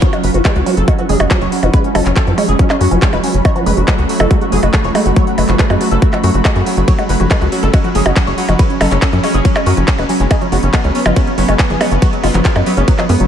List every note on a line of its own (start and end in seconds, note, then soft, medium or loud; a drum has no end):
0.00 13.27 F#3 medium
0.00 0.05 F#3 medium
0.00 13.27 C#4 medium
0.00 3.47 C#4 medium
0.00 0.07 C#5 loud
0.00 0.21 F6 medium
0.00 kick loud
0.00 closed hi-hat medium
0.13 0.17 F#4 medium
0.13 closed hi-hat soft
0.13 percussion blips soft
0.23 0.30 F#1 medium
0.23 0.28 B4 medium
0.23 open hi-hat loud
0.34 0.41 F#1 medium
0.34 0.38 F3 medium
0.34 0.39 F#4 medium
0.34 closed hi-hat medium
0.45 0.50 G#3 medium
0.45 0.49 B4 loud
0.45 kick loud
0.45 clap loud
0.45 closed hi-hat medium
0.45 percussion blips medium
0.56 0.63 C#2 medium
0.56 0.60 F#4 medium
0.56 13.27 B5 medium
0.56 closed hi-hat soft
0.66 0.70 F#3 medium
0.66 0.71 F#4 medium
0.66 open hi-hat loud
0.77 0.84 F#1 medium
0.77 0.81 A4 medium
0.77 closed hi-hat medium
0.88 0.92 F#4 medium
0.88 kick loud
0.88 closed hi-hat medium
0.88 percussion blips soft
0.99 1.02 F3 medium
0.99 1.03 F#4 medium
0.99 closed hi-hat soft
1.09 1.16 F#1 medium
1.09 1.15 G#3 medium
1.09 1.14 G#4 medium
1.09 open hi-hat loud
1.20 1.27 F#1 medium
1.20 1.24 F#4 medium
1.20 closed hi-hat medium
1.20 percussion blips medium
1.31 1.34 F#3 medium
1.31 1.35 F#4 medium
1.31 kick loud
1.31 clap loud
1.31 closed hi-hat medium
1.41 1.48 F#1 medium
1.41 1.46 C#5 loud
1.41 closed hi-hat soft
1.52 1.56 F#4 medium
1.52 open hi-hat loud
1.63 1.70 F#1 medium
1.63 1.66 F3 medium
1.63 1.67 F#4 medium
1.63 closed hi-hat medium
1.63 percussion blips soft
1.73 1.79 G#3 medium
1.73 1.78 B4 loud
1.73 kick loud
1.73 closed hi-hat medium
1.84 1.89 C#4 medium
1.84 closed hi-hat soft
1.95 2.02 F#1 loud
1.95 1.98 F#3 medium
1.95 1.99 A4 medium
1.95 open hi-hat loud
1.95 percussion blips medium
2.06 2.13 F#1 medium
2.06 2.10 C#4 medium
2.06 clap soft
2.06 closed hi-hat medium
2.16 2.21 A4 loud
2.16 kick loud
2.16 clap loud
2.16 closed hi-hat medium
2.27 2.34 F#2 medium
2.27 2.30 F3 medium
2.27 2.32 C#4 medium
2.27 closed hi-hat soft
2.38 2.43 G#3 medium
2.38 2.42 C#4 medium
2.38 open hi-hat loud
2.38 percussion blips soft
2.49 2.55 F#1 medium
2.49 2.53 G#4 medium
2.49 closed hi-hat medium
2.59 2.63 F#3 medium
2.59 2.64 C#4 medium
2.59 kick loud
2.59 closed hi-hat medium
2.70 2.74 C#4 medium
2.70 clap soft
2.70 closed hi-hat soft
2.70 percussion blips medium
2.81 2.88 F#2 medium
2.81 2.85 F#4 loud
2.81 open hi-hat loud
2.91 2.98 F#1 medium
2.91 2.95 F3 medium
2.91 2.96 C#4 medium
2.91 closed hi-hat medium
3.02 3.08 G#3 medium
3.02 3.06 C#4 medium
3.02 kick loud
3.02 clap loud
3.02 closed hi-hat medium
3.13 3.20 F#1 medium
3.13 3.17 B4 loud
3.13 closed hi-hat soft
3.13 percussion blips soft
3.24 3.27 F#3 medium
3.24 3.28 C#4 medium
3.24 open hi-hat loud
3.34 3.41 F#1 medium
3.34 3.39 C#4 medium
3.34 closed hi-hat medium
3.45 6.90 A3 medium
3.45 3.49 C#5 medium
3.45 kick loud
3.45 closed hi-hat medium
3.45 percussion blips medium
3.56 3.59 F3 medium
3.56 3.60 F#4 medium
3.56 closed hi-hat soft
3.66 3.73 F#1 medium
3.66 3.72 G#3 medium
3.66 3.71 B4 medium
3.66 open hi-hat loud
3.77 3.84 F#1 medium
3.77 3.82 F#4 medium
3.77 closed hi-hat medium
3.88 3.91 F#3 medium
3.88 3.92 B4 loud
3.88 kick loud
3.88 clap loud
3.88 closed hi-hat soft
3.88 percussion blips soft
3.98 4.05 C#2 medium
3.98 4.03 F#4 medium
3.98 closed hi-hat soft
4.09 4.14 F#4 medium
4.09 open hi-hat loud
4.20 4.27 F#1 medium
4.20 4.23 F3 medium
4.20 4.24 A4 medium
4.20 closed hi-hat medium
4.20 percussion blips medium
4.31 4.36 G#3 medium
4.31 4.35 F#4 medium
4.31 kick loud
4.31 closed hi-hat medium
4.41 4.46 F#4 medium
4.41 closed hi-hat soft
4.52 4.59 F#1 loud
4.52 4.55 F#3 medium
4.52 4.57 G#4 loud
4.52 open hi-hat loud
4.63 4.70 F#1 medium
4.63 4.67 F#4 medium
4.63 closed hi-hat medium
4.63 percussion blips soft
4.74 4.78 F#4 medium
4.74 kick loud
4.74 clap loud
4.74 closed hi-hat medium
4.84 4.91 F#1 medium
4.84 4.88 F3 medium
4.84 4.89 C#5 loud
4.84 closed hi-hat soft
4.95 5.00 G#3 medium
4.95 4.99 F#4 medium
4.95 open hi-hat loud
4.95 percussion blips medium
5.06 5.13 F#1 medium
5.06 5.10 F#4 medium
5.06 closed hi-hat medium
5.16 5.20 F#3 medium
5.16 5.21 C#5 loud
5.16 kick loud
5.16 closed hi-hat medium
5.27 5.32 F#4 medium
5.27 closed hi-hat soft
5.38 5.45 F#1 medium
5.38 5.42 B4 medium
5.38 open hi-hat loud
5.38 percussion blips soft
5.49 5.55 F#1 medium
5.49 5.52 F3 medium
5.49 5.53 F#4 medium
5.49 clap soft
5.49 closed hi-hat medium
5.59 5.65 G#3 medium
5.59 5.64 B4 loud
5.59 kick loud
5.59 clap loud
5.59 closed hi-hat soft
5.70 5.77 F#2 medium
5.70 5.74 F#4 medium
5.70 closed hi-hat soft
5.70 percussion blips medium
5.81 5.84 F#3 medium
5.81 5.85 F#4 medium
5.81 open hi-hat loud
5.91 5.98 F#1 medium
5.91 5.96 A4 medium
5.91 closed hi-hat medium
6.02 6.07 F#4 medium
6.02 kick loud
6.02 closed hi-hat medium
6.13 6.16 F3 medium
6.13 6.17 F#4 medium
6.13 clap soft
6.13 closed hi-hat soft
6.13 percussion blips soft
6.24 6.30 F#2 medium
6.24 6.27 F#3 medium
6.24 6.28 F#4 loud
6.24 open hi-hat loud
6.34 6.41 F#1 medium
6.34 6.39 F#4 medium
6.34 closed hi-hat medium
6.45 6.48 G#3 medium
6.45 6.49 F#4 medium
6.45 kick loud
6.45 clap loud
6.45 closed hi-hat soft
6.45 percussion blips medium
6.56 6.63 F#2 medium
6.56 6.60 F#4 loud
6.56 closed hi-hat soft
6.66 6.70 A3 medium
6.66 6.71 F#4 medium
6.66 open hi-hat loud
6.77 6.84 F#1 medium
6.77 6.83 F#3 medium
6.77 6.82 F#4 medium
6.77 closed hi-hat medium
6.88 6.91 F#3 medium
6.88 10.33 C#4 medium
6.88 6.92 C#5 loud
6.88 kick loud
6.88 closed hi-hat soft
6.88 ride medium
6.99 7.04 G#3 medium
6.99 7.03 F#4 medium
6.99 closed hi-hat soft
6.99 percussion blips soft
7.09 7.16 F#1 loud
7.09 7.14 B4 medium
7.09 open hi-hat loud
7.20 7.27 F#1 medium
7.20 7.23 F3 medium
7.20 7.24 F#4 medium
7.20 closed hi-hat soft
7.31 7.36 G#3 medium
7.31 7.35 B4 loud
7.31 kick loud
7.31 clap loud
7.31 closed hi-hat soft
7.31 ride medium
7.31 percussion blips medium
7.41 7.48 C#2 medium
7.41 7.46 F#4 medium
7.41 closed hi-hat soft
7.52 7.55 F#3 medium
7.52 7.57 F#4 medium
7.52 open hi-hat loud
7.63 7.70 F#1 medium
7.63 7.68 G#3 medium
7.63 7.67 A4 medium
7.63 closed hi-hat medium
7.74 7.78 F#4 medium
7.74 kick loud
7.74 closed hi-hat soft
7.74 ride medium
7.74 percussion blips soft
7.84 7.88 F3 medium
7.84 7.89 F#4 medium
7.84 closed hi-hat soft
7.95 8.02 F#1 medium
7.95 8.00 G#3 medium
7.95 7.99 G#4 medium
7.95 open hi-hat loud
8.06 8.13 F#1 medium
8.06 8.10 F#4 medium
8.06 closed hi-hat soft
8.06 percussion blips medium
8.16 8.20 F#3 medium
8.16 8.21 F#4 medium
8.16 kick loud
8.16 clap loud
8.16 closed hi-hat medium
8.16 ride medium
8.27 8.34 F#1 medium
8.27 8.33 G#3 medium
8.27 8.32 C#5 medium
8.27 closed hi-hat soft
8.38 8.42 F#4 medium
8.38 open hi-hat loud
8.49 8.55 F#1 medium
8.49 8.52 F3 medium
8.49 8.53 F#4 medium
8.49 closed hi-hat medium
8.49 percussion blips soft
8.59 8.65 G#3 medium
8.59 8.64 B4 loud
8.59 kick loud
8.59 closed hi-hat medium
8.59 ride medium
8.70 8.74 C#4 medium
8.70 closed hi-hat soft
8.81 8.88 F#1 medium
8.81 8.84 F#3 medium
8.81 8.85 A4 medium
8.81 open hi-hat loud
8.81 percussion blips medium
8.91 8.98 F#1 medium
8.91 8.97 G#3 medium
8.91 8.96 C#4 medium
8.91 clap soft
8.91 closed hi-hat medium
9.02 9.07 A4 loud
9.02 kick loud
9.02 clap loud
9.02 closed hi-hat soft
9.02 ride medium
9.13 9.20 F#2 medium
9.13 9.16 F3 medium
9.13 9.17 C#4 medium
9.13 closed hi-hat soft
9.24 9.29 G#3 medium
9.24 9.28 C#4 medium
9.24 open hi-hat loud
9.24 percussion blips soft
9.34 9.41 F#1 medium
9.34 9.39 G#4 medium
9.34 closed hi-hat medium
9.45 9.48 F#3 medium
9.45 9.49 C#4 medium
9.45 kick loud
9.45 closed hi-hat medium
9.45 ride medium
9.56 9.61 G#3 medium
9.56 9.60 C#4 medium
9.56 clap soft
9.56 closed hi-hat soft
9.56 percussion blips medium
9.66 9.73 F#2 loud
9.66 9.71 F#4 loud
9.66 open hi-hat loud
9.77 9.84 F#1 medium
9.77 9.80 F3 medium
9.77 9.82 C#4 medium
9.77 closed hi-hat medium
9.88 9.93 G#3 medium
9.88 9.92 C#4 medium
9.88 kick loud
9.88 clap loud
9.88 closed hi-hat soft
9.88 ride medium
9.99 10.05 F#1 medium
9.99 10.03 B4 loud
9.99 closed hi-hat soft
9.99 percussion blips soft
10.09 10.13 F#3 medium
10.09 10.14 C#4 medium
10.09 open hi-hat loud
10.20 10.27 F#1 medium
10.20 10.25 G#3 medium
10.20 10.24 C#4 medium
10.20 closed hi-hat medium
10.31 13.27 B3 medium
10.31 10.35 G#4 loud
10.31 kick loud
10.31 closed hi-hat medium
10.31 ride medium
10.31 percussion blips medium
10.41 10.45 F3 medium
10.41 10.46 C#4 medium
10.41 closed hi-hat soft
10.52 10.59 F#1 loud
10.52 10.58 G#3 medium
10.52 10.56 F#4 medium
10.52 open hi-hat loud
10.63 10.70 F#1 medium
10.63 10.67 C#4 medium
10.63 closed hi-hat medium
10.73 10.77 F#3 medium
10.73 10.78 F#4 medium
10.73 kick loud
10.73 clap loud
10.73 closed hi-hat medium
10.73 ride medium
10.73 percussion blips soft
10.84 10.91 C#2 medium
10.84 10.90 G#3 medium
10.84 10.89 C#4 medium
10.84 closed hi-hat soft
10.95 10.99 C#4 medium
10.95 open hi-hat medium
11.06 11.13 F#1 medium
11.06 11.09 F3 medium
11.06 11.10 F4 medium
11.06 closed hi-hat medium
11.06 percussion blips medium
11.16 11.22 G#3 medium
11.16 11.21 C#4 medium
11.16 kick loud
11.16 closed hi-hat medium
11.16 ride medium
11.27 11.32 C#4 medium
11.27 closed hi-hat soft
11.38 11.45 F#1 loud
11.38 11.41 F#3 medium
11.38 11.42 C#4 medium
11.38 open hi-hat loud
11.49 11.55 F#1 medium
11.49 11.54 G#3 medium
11.49 11.53 C#4 medium
11.49 closed hi-hat medium
11.49 percussion blips soft
11.59 11.64 C#4 medium
11.59 kick loud
11.59 clap loud
11.59 closed hi-hat medium
11.59 ride medium
11.70 11.77 F#1 medium
11.70 11.73 F3 medium
11.70 11.74 G#4 loud
11.70 closed hi-hat soft
11.81 11.86 G#3 medium
11.81 11.85 C#4 medium
11.81 open hi-hat loud
11.81 percussion blips medium
11.91 11.98 F#1 medium
11.91 11.96 C#4 medium
11.91 closed hi-hat medium
12.02 12.05 F#3 medium
12.02 12.07 F#4 loud
12.02 kick loud
12.02 closed hi-hat medium
12.02 ride medium
12.13 12.17 F#3 medium
12.13 12.18 G#3 medium
12.13 closed hi-hat soft
12.24 12.30 F#1 medium
12.24 12.28 F4 medium
12.24 open hi-hat loud
12.24 percussion blips soft
12.34 12.41 F#1 medium
12.34 12.38 F3 medium
12.34 12.39 F#3 medium
12.34 clap soft
12.34 closed hi-hat medium
12.45 12.50 G#3 medium
12.45 12.49 F4 loud
12.45 kick loud
12.45 clap loud
12.45 closed hi-hat medium
12.45 ride medium
12.56 12.63 F#2 medium
12.56 12.60 F#3 medium
12.56 closed hi-hat soft
12.56 percussion blips medium
12.66 12.71 F#3 medium
12.66 12.70 F#3 medium
12.66 open hi-hat loud
12.77 12.84 F#1 medium
12.77 12.83 G#3 medium
12.77 12.82 C#4 medium
12.77 closed hi-hat medium
12.88 12.92 F#3 medium
12.88 kick loud
12.88 closed hi-hat medium
12.88 ride medium
12.99 13.02 F3 medium
12.99 13.03 F#3 medium
12.99 clap soft
12.99 closed hi-hat soft
12.99 percussion blips soft
13.09 13.16 F#2 loud
13.09 13.15 G#3 medium
13.09 13.14 B3 loud
13.09 open hi-hat loud
13.20 13.27 F#1 medium
13.20 13.27 F#3 medium
13.20 13.24 F#3 medium
13.20 closed hi-hat medium